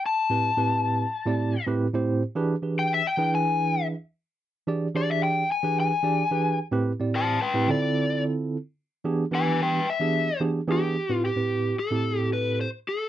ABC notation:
X:1
M:4/4
L:1/16
Q:1/4=110
K:Am
V:1 name="Electric slide guitar"
a12 z4 | z4 g e g2 ^g4 z4 | z4 d e g2 ^g2 g6 | z4 [ca]2 [Bg]2 d4 z4 |
z4 [B^g]2 [B=g]2 e4 z2 G2- | G2 G4 A4 B2 c2 A2 |]
V:2 name="Tine electric piano"
z2 [A,,CEGB] z [A,,CEGB]3 z2 [A,,CEGd]2 z [A,,CEGB] z [A,,CEGc]2 | z [E,DG^GB] z [E,D=G^GB]3 z [E,DEGB]6 z3 | z2 [E,DG^Gd] z [E,D=G^Gd]3 z2 [E,D=G^GB]2 z [E,D=G^Gd] z [E,D=G^GB]2 | z [A,,CEGB] z [A,,CEGd]3 z [A,,CEGB] [D,CEFA]6 z2 |
z2 [E,B,DG^G] z [E,B,D=GB]3 z2 [E,B,DG^G]2 z [E,B,D=G^G] z [E,B,D=G^G]2 | z [A,,CEGB] z [A,,CEGB]3 z [A,,CEGA]6 z3 |]